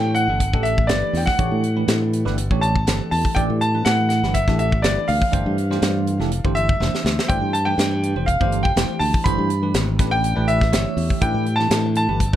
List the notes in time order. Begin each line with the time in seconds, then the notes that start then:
Already playing: A2 E3 A3 D4 G4 C#5 G5
0.15 F#5, closed hi-hat
0.28 G1 E3 A3 D4 G4 A4
0.40 G4 A4, kick, closed hi-hat
0.53 A1 E3 A3 D4 G4 A4, kick
0.63 E5, closed hi-hat
0.78 G4, kick
0.87 G1 E3 A3 D4 G4 B4 D5, snare, closed hi-hat
1.02 muted fingered electric bass stroke
1.13 E2 G5, snare, open hi-hat
1.26 F#5, kick, snare
1.38 A1 E3 A3 D4 G4 C#5, kick, closed hi-hat
1.51 A2
1.63 G4 B4, closed hi-hat
1.76 E3 A3 D4 G4 B4
1.88 A2, snare, closed hi-hat
2.13 closed hi-hat
2.25 G1 E3 A3 D4 G4 B4, snare
2.37 G4 A4, closed hi-hat
2.51 A1 E3 A3 D4 G4 C#5, kick
2.61 A5, closed hi-hat
2.76 G4, kick
2.87 G1 E3 A3 D4 G4 A4, snare, closed hi-hat
3.00 muted fingered electric bass stroke
3.11 E2 A5, open hi-hat
3.25 kick
3.35 A1 E3 A3 D4 G4 D5 G5, kick, closed hi-hat
3.50 A2
3.60 G4 B4 A5, closed hi-hat
3.74 E3 A3 D4 G4 B4
3.85 A2 F#5, snare, closed hi-hat
4.09 F#5, snare, closed hi-hat
4.23 G1 E3 A3 D4 G4 B4, snare
4.34 G4 D5 E5, kick, closed hi-hat
4.48 A1 E3 A3 D4 G4 A4, kick, snare
4.59 E5, closed hi-hat
4.72 G4 C#5, kick
4.82 G1 E3 A3 D4 G4 B4 D5, snare, closed hi-hat
4.97 muted fingered electric bass stroke
5.08 D2 F5, open hi-hat
5.22 kick
5.32 G1 E3 A3 D4 G4 C5, kick, closed hi-hat
5.46 G2
5.57 G4 C5, closed hi-hat
5.70 E3 A3 D4 G4 C5, snare
5.82 G2, snare, closed hi-hat
6.07 closed hi-hat
6.20 F1 E3 A3 D4 G4 A4, snare
6.31 G4, closed hi-hat
6.44 G1 E3 A3 D4 G4 C5, kick
6.55 E5, closed hi-hat
6.69 G4 D5, kick
6.80 F1 E3 A3 D4 G4 C5, snare
6.95 snare
7.05 D2, snare
7.19 snare
7.28 G1 E3 A3 D4 G4 C5 G5, kick, closed hi-hat
7.42 G2
7.53 G4 C5 A5, closed hi-hat
7.65 E3 A3 D4 G4 B4 G5
7.78 G2, snare, closed hi-hat
8.03 closed hi-hat
8.16 F1 E3 A3 D4 G4 C5
8.26 G4 C5 F5, kick, closed hi-hat
8.40 G1 E3 A3 D4 G4 C5, kick
8.52 closed hi-hat
8.63 G4 C5 G5, kick
8.76 F1 E3 A3 D4 G4 C5, snare, closed hi-hat
8.99 D2 A5, open hi-hat
9.14 kick
9.24 G1 E3 A3 D4 G4 C5 B5, kick, closed hi-hat
9.38 G2
9.50 G4 D5, closed hi-hat
9.62 E3 A3 D4 G4 B4
9.74 G#1, snare, closed hi-hat
9.99 A1 E3 A3 D4 G4 B4, kick, snare, closed hi-hat
10.11 G5
10.24 closed hi-hat
10.35 A1 E3 A3 D4 G4 B4
10.48 E5, closed hi-hat
10.60 G4 B4, kick, snare
10.72 G1 E3 A3 D4 G4 C#5, snare, closed hi-hat
10.85 muted fingered electric bass stroke
10.97 E2, open hi-hat
11.10 kick
11.21 A1 E3 A3 D4 G4 B4 G5, kick, closed hi-hat
11.34 A2
11.46 G4 A4, closed hi-hat
11.56 E3 A3 D4 G4 A5, snare
11.60 B4
11.70 A2, snare, closed hi-hat
11.95 A5, closed hi-hat
12.08 G1 E3 A3 D4 G4 B4
12.20 G4 D5, kick, closed hi-hat
12.33 A3